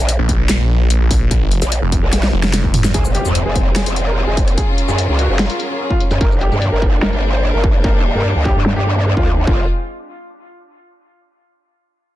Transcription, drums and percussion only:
0.09 closed hi-hat
0.29 kick, closed hi-hat
0.49 snare, clap, closed hi-hat
0.90 closed hi-hat
1.11 kick, open hi-hat
1.31 kick, closed hi-hat
1.51 closed hi-hat
1.62 closed hi-hat, shaker
1.72 closed hi-hat
1.92 kick, closed hi-hat
2.13 snare, closed hi-hat
2.23 snare
2.43 snare
2.53 snare, closed hi-hat
2.64 kick
2.74 mid tom, open hi-hat
2.84 snare, shaker
2.94 kick, closed hi-hat
3.05 shaker
3.15 closed hi-hat
3.25 shaker
3.35 closed hi-hat
3.56 kick, closed hi-hat
3.76 snare, closed hi-hat
3.86 closed hi-hat
3.96 closed hi-hat
4.37 kick, closed hi-hat
4.48 closed hi-hat
4.58 kick, closed hi-hat
4.78 closed hi-hat
4.88 shaker
4.98 closed hi-hat
5.19 closed hi-hat
5.39 snare, closed hi-hat
5.50 closed hi-hat
5.60 closed hi-hat
5.90 kick
6.00 closed hi-hat
6.11 closed hi-hat, shaker
6.21 kick, closed hi-hat
6.31 shaker
6.41 closed hi-hat
6.52 shaker
6.62 closed hi-hat
6.82 kick, closed hi-hat
7.02 snare, closed hi-hat
7.13 closed hi-hat
7.23 closed hi-hat
7.64 kick, closed hi-hat
7.74 closed hi-hat
7.84 kick, closed hi-hat
8.05 closed hi-hat
8.15 shaker
8.25 closed hi-hat
8.45 kick
8.66 snare
8.76 closed hi-hat
9.17 kick
9.47 kick

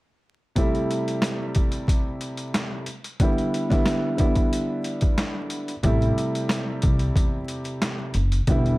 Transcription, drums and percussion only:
0.56 kick, closed hi-hat
0.75 closed hi-hat
0.91 closed hi-hat
1.08 closed hi-hat
1.22 snare, closed hi-hat
1.55 kick, closed hi-hat
1.72 closed hi-hat
1.88 kick, closed hi-hat
2.21 closed hi-hat
2.37 closed hi-hat
2.54 snare, closed hi-hat
2.86 closed hi-hat
3.04 closed hi-hat
3.20 kick, closed hi-hat
3.38 closed hi-hat
3.54 closed hi-hat
3.70 kick, snare, closed hi-hat
3.86 snare, closed hi-hat
4.18 kick, closed hi-hat
4.35 kick, closed hi-hat
4.53 closed hi-hat
4.84 closed hi-hat
5.01 kick, closed hi-hat
5.18 snare, closed hi-hat
5.50 closed hi-hat
5.68 closed hi-hat
5.83 kick, closed hi-hat
6.02 closed hi-hat
6.18 closed hi-hat
6.35 closed hi-hat
6.49 snare, closed hi-hat
6.82 kick, closed hi-hat
6.99 closed hi-hat
7.16 kick, closed hi-hat
7.48 closed hi-hat
7.65 closed hi-hat
7.82 snare, closed hi-hat
8.14 closed hi-hat
8.32 closed hi-hat
8.47 kick, closed hi-hat
8.66 closed hi-hat

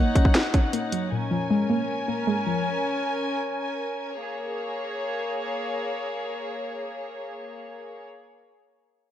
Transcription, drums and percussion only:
0.16 kick, closed hi-hat
0.25 kick
0.35 snare, closed hi-hat
0.54 kick, closed hi-hat
0.73 closed hi-hat
0.92 closed hi-hat

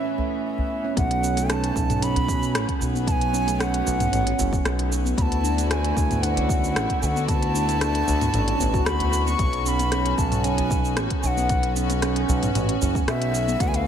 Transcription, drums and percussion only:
0.18 udu
0.58 udu
0.97 kick, closed hi-hat, shaker
1.11 closed hi-hat
1.24 shaker
1.37 closed hi-hat, shaker
1.50 cross-stick, closed hi-hat, shaker
1.64 closed hi-hat
1.76 kick, shaker
1.90 closed hi-hat, mid tom, shaker
2.02 closed hi-hat, shaker
2.16 closed hi-hat, udu
2.28 kick, shaker
2.43 shaker
2.55 cross-stick, closed hi-hat, shaker
2.69 kick, closed hi-hat
2.81 udu, shaker
2.96 shaker
3.07 kick, closed hi-hat, shaker
3.21 closed hi-hat
3.34 shaker
3.48 closed hi-hat, shaker
3.60 cross-stick, closed hi-hat, shaker
3.74 closed hi-hat
3.87 udu, shaker
4.00 closed hi-hat, mid tom, shaker
4.13 closed hi-hat, mid tom, shaker
4.27 closed hi-hat
4.39 udu, shaker
4.53 kick, shaker
4.65 cross-stick, closed hi-hat, shaker
4.79 closed hi-hat
4.92 shaker
5.06 shaker
5.18 kick, closed hi-hat, shaker
5.32 closed hi-hat
5.45 shaker
5.58 closed hi-hat, shaker
5.71 cross-stick, closed hi-hat, shaker
5.85 closed hi-hat
5.97 kick, shaker
6.11 closed hi-hat, mid tom, shaker
6.23 closed hi-hat, shaker
6.37 closed hi-hat, udu
6.49 kick, shaker
6.64 shaker
6.76 cross-stick, closed hi-hat, shaker
6.90 kick, closed hi-hat
7.02 udu, shaker
7.16 shaker
7.28 kick, closed hi-hat, shaker
7.42 closed hi-hat
7.55 shaker
7.69 closed hi-hat, shaker
7.81 cross-stick, closed hi-hat, shaker
7.95 closed hi-hat
8.08 udu, shaker
8.21 closed hi-hat, mid tom, shaker
8.34 closed hi-hat, mid tom, shaker
8.48 closed hi-hat
8.59 udu, shaker
8.74 kick, shaker
8.86 cross-stick, closed hi-hat, shaker
9.00 closed hi-hat, udu
9.13 shaker
9.27 shaker
9.39 kick, closed hi-hat, shaker
9.53 closed hi-hat
9.66 shaker
9.79 closed hi-hat, shaker
9.92 cross-stick, closed hi-hat, shaker
10.06 closed hi-hat
10.18 kick, shaker
10.32 closed hi-hat, mid tom, shaker
10.44 closed hi-hat, shaker
10.58 closed hi-hat, udu
10.71 kick, shaker
10.85 shaker
10.97 cross-stick, closed hi-hat, shaker
11.10 kick, closed hi-hat
11.23 udu, shaker
11.37 shaker
11.49 kick, closed hi-hat, shaker
11.63 closed hi-hat
11.76 shaker
11.90 closed hi-hat, shaker
12.02 cross-stick, closed hi-hat, shaker
12.16 closed hi-hat
12.29 udu, shaker
12.43 closed hi-hat, mid tom, shaker
12.55 closed hi-hat, mid tom, shaker
12.69 closed hi-hat
12.82 udu, shaker
12.95 kick, shaker
13.08 cross-stick, closed hi-hat, shaker
13.22 closed hi-hat
13.35 shaker
13.48 shaker
13.60 kick, closed hi-hat, shaker
13.74 closed hi-hat

